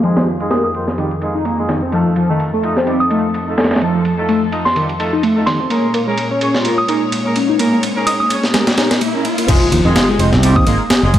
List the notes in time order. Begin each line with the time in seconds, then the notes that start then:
Already playing: F2 D#3 G#4
0.03 F3 G#3 D#4 F4 G#4, ride
0.17 F3, snare, ride
0.40 G#3 D#4 F4 G#4, ride
0.51 A#3 D#6, snare, ride
0.64 D#6
0.74 C4 D#4 F4 C5, ride
0.88 snare
0.98 D#3 G3 D#4 F4 G4, ride
1.11 ride
1.21 G#3 D#4 F4 G#4, ride
1.35 D#4
1.45 A#3, ride
1.58 G#3 D#4 F4 G#4
1.69 D#3, snare, ride
1.82 C4
1.92 F3 A3 D#4 F4 A4, ride
2.16 F3, ride
2.29 D#3 A3 D#4 F4 A4
2.40 ride
2.53 A3
2.63 D#4 F4 D#5, ride
2.77 C4, snare
2.87 G3 C4 D#4 F4 G4, ride
3.00 D#6
3.10 A3 D#4 F4 A4, ride
3.34 ride
3.47 A3 D#4 F4 A4
3.58 A3, snare, ride
3.64 snare, ride
3.71 A3, snare, ride
3.76 snare, ride
3.81 F3 A3 D#4 F4 A4, ride
3.95 F3
4.05 ride
4.18 A3 D#4 F4 A4
4.29 A3, ride
4.52 D#4 F4 D#5, ride
4.65 C6, snare
4.76 D#3 G3 D#4 F4 G4, ride
4.89 ride
4.99 A3 D#4 F4 A4, ride
5.13 D#4
5.23 A3, ride
5.36 A3 D#4 F4 A4
5.46 D#3 C6, snare, ride
5.60 C4
5.70 A#2 G#3 A#3 C#4 G#4 A#4 C#5, ride, riser
5.94 A#3, ride
6.07 G#3 A#3 C#4 G#4 A#4
6.18 ride
6.31 C#4
6.41 C#4 G#4 C#5, ride
6.54 F4, snare
6.65 A#3 C#4 F4 G#4 A#4, ride
6.78 D#6
6.88 A#3 C#4 D#4 G#4 A#4, ride
7.12 ride
7.25 A#3 C#4 G#4 A#4
7.36 C#4, ride
7.49 D#4
7.59 A#3 C#4 G#4 A#4, ride
7.73 A#3
7.83 ride
7.96 A#3 C#4 G#4 A#4
8.07 D#4 D#6, ride
8.20 D#6
8.30 C#4 G#4 C#5, ride
8.44 snare
8.54 G#3 A#3 C#4 G#4 A#4, snare, ride
8.67 snare, ride
8.77 A#3 C#4 D#4 G#4 A#4, snare, ride
8.91 A#4, snare, ride
9.01 A#3, ride
9.14 A#3 C#4 G#4 A#4
9.25 A#3, ride
9.38 A#3, ride
9.48 F1 F3 G#3 D#4 F4 G#4, kick, crash, ride, impact
9.72 D#2 F3, ride
9.85 F2 D#3 G#3 D#4 F4 G#4
9.96 snare, ride
10.09 G#3
10.19 F1 C4 D#4 F4 C5, ride
10.32 C2 C4, snare
10.43 G3 C4 D#4 F4 G4, ride
10.56 D#2 D#6, kick
10.66 G#1 G#3 A#3 D#4 F4 G#4, ride
10.90 snare, ride
11.03 F1 G#3 D#4 F4 G#4
11.14 G#3, kick, ride